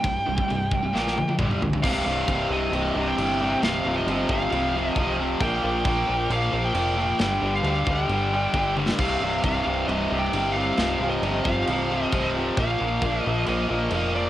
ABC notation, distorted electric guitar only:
X:1
M:4/4
L:1/16
Q:1/4=134
K:Gphr
V:1 name="Distorted electric guitar" clef=bass
[C,,G,,]2 [C,,G,,] [C,,G,,] [C,,G,,]2 [C,,G,,] [C,,G,,] [B,,F,B,]2 [B,,F,] [B,,F,] [G,,D,G,]2 [G,,D,] [G,,D,] | [K:Cm] [C,,G,,C,]2 [C,,G,,C,]2 [C,,G,,C,]2 [C,,G,,C,]2 [C,,G,,C,]2 [C,,G,,C,]2 [C,,G,,C,]2 [C,,G,,C,]2 | [C,F,]2 [F,,C,F,]2 [F,,C,F,]2 [F,,C,F,]2 [F,,C,F,]2 [F,,C,F,]2 [F,,C,F,]2 [F,,C,F,]2 | [B,,F,B,]2 [B,,F,B,]2 [B,,F,B,]2 [B,,F,B,]2 [B,,F,B,]2 [B,,F,B,]2 [B,,F,B,]2 [B,,F,B,]2 |
[G,,D,G,]2 [G,,D,G,]2 [G,,D,G,]2 [G,,D,G,]2 [G,,D,G,]2 [G,,D,G,]2 [G,,D,G,]2 [G,,D,G,]2 | [C,,G,,C,]2 [C,,G,,C,]2 [C,,G,,C,]2 [C,,G,,C,]2 [C,,G,,C,]2 [C,,G,,C,]2 [C,,G,,C,]2 [C,,G,,C,]2 | [F,,C,F,]2 [F,,C,F,]2 [F,,C,F,]2 [F,,C,F,]2 [F,,C,F,]2 [F,,C,F,]2 [F,,C,F,]2 [F,,C,F,]2 | [B,,F,B,]2 [B,,F,B,]2 [B,,F,B,]2 [B,,F,B,]2 [B,,F,B,]2 [B,,F,B,]2 [B,,F,B,]2 [B,,F,B,]2 |]